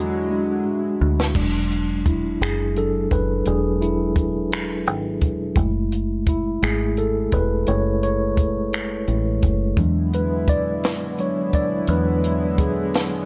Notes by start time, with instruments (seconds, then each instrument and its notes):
Already playing: fingered electric bass E2, analog synth pad D3 F#3 G#3 E4, tine electric piano G#3 D4 F#4
0.31 tine electric piano G#3 D4 F#4
0.66 fingered electric bass G#2
1.01 fingered electric bass D2
1.20 snare
1.35 fingered electric bass E1, tine electric piano F#3 G#3 D4, kick, crash
1.72 closed hi-hat
2.06 tine electric piano E4, kick, closed hi-hat
2.41 fingered electric bass F#1, tine electric piano G#4, finger snap, closed hi-hat
2.76 tine electric piano F#3 D4 G#4 A4, closed hi-hat
3.11 fingered electric bass F#1, tine electric piano B4, kick, closed hi-hat
3.45 fingered electric bass E1, tine electric piano F#3 G#3 D4 G#4, closed hi-hat
3.82 tine electric piano E4, closed hi-hat
4.16 kick, closed hi-hat
4.52 finger snap, closed hi-hat
4.87 fingered electric bass G#1, closed hi-hat
5.21 fingered electric bass E1, kick, closed hi-hat
5.56 fingered electric bass F#1, tine electric piano G#3 A3 E4, kick, closed hi-hat
5.92 closed hi-hat
6.27 tine electric piano E4, kick, closed hi-hat
6.62 fingered electric bass G#1, tine electric piano G#3 A3 E4 G#4, finger snap, closed hi-hat
6.97 tine electric piano A4, closed hi-hat
7.32 fingered electric bass E1, tine electric piano B4, kick, closed hi-hat
7.66 fingered electric bass F#1, tine electric piano G#3 A3 E4 C#5, closed hi-hat
8.03 tine electric piano C#5, closed hi-hat
8.37 kick, closed hi-hat
8.73 finger snap, closed hi-hat
9.07 fingered electric bass A1, tine electric piano G#3 A3 E4, closed hi-hat
9.42 fingered electric bass F#1, kick, closed hi-hat
9.77 fingered electric bass E2, analog synth pad D3 G#3 B3 E4, tine electric piano F#3 G#3 D4, kick, closed hi-hat
10.13 tine electric piano B4, closed hi-hat
10.48 tine electric piano D5, kick, closed hi-hat
10.84 fingered electric bass F#2, snare, closed hi-hat
11.18 tine electric piano F#3 G#3 D4 C#5, closed hi-hat
11.53 fingered electric bass D2, tine electric piano D5, kick, closed hi-hat
11.87 fingered electric bass E2, tine electric piano F#3 G#3 D4 B4, closed hi-hat
12.24 closed hi-hat
12.58 tine electric piano G#4, kick, closed hi-hat
12.94 snare, closed hi-hat